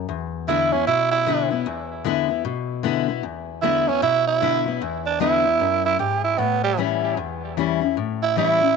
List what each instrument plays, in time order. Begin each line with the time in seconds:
0.09 steel-string acoustic guitar E2
0.48 steel-string acoustic guitar D3 G#3 B3 E4, tenor saxophone E4
0.72 steel-string acoustic guitar B3 E4, tenor saxophone C#4
0.87 steel-string acoustic guitar B2, tenor saxophone E4
1.11 tenor saxophone E4
1.26 steel-string acoustic guitar D3 G#3 B3 E4
1.50 steel-string acoustic guitar B3 E4
1.66 steel-string acoustic guitar E2
2.04 steel-string acoustic guitar D3 G#3 B3 E4
2.29 steel-string acoustic guitar B3 E4
2.45 steel-string acoustic guitar B2
2.83 steel-string acoustic guitar D3 G#3 B3 E4
3.08 steel-string acoustic guitar B3 E4
3.23 steel-string acoustic guitar E2
3.62 steel-string acoustic guitar D3 G#3 B3 E4, tenor saxophone E4
3.87 steel-string acoustic guitar B3 E4, tenor saxophone C#4
4.02 steel-string acoustic guitar B2, tenor saxophone E4
4.27 tenor saxophone E4
4.41 steel-string acoustic guitar D3 G#3 B3 E4
4.66 steel-string acoustic guitar B3 E4
4.82 steel-string acoustic guitar E2
5.06 tenor saxophone D4
5.20 steel-string acoustic guitar D3 G#3 B3 E4, tenor saxophone E4
5.44 steel-string acoustic guitar B3 E4
5.60 steel-string acoustic guitar F#2
5.85 tenor saxophone E4
5.99 steel-string acoustic guitar G#2, tenor saxophone G4
6.24 tenor saxophone E4
6.38 steel-string acoustic guitar A2, tenor saxophone B3
6.64 tenor saxophone G3
6.77 steel-string acoustic guitar E3 G3 C#4 E4
7.17 steel-string acoustic guitar E2
7.57 steel-string acoustic guitar E3 G3 C#4 E4
7.81 steel-string acoustic guitar C#4 E4
7.97 steel-string acoustic guitar A2
8.22 tenor saxophone E4
8.36 steel-string acoustic guitar E3 G3 C#4 E4, tenor saxophone E4
8.61 steel-string acoustic guitar C#4 E4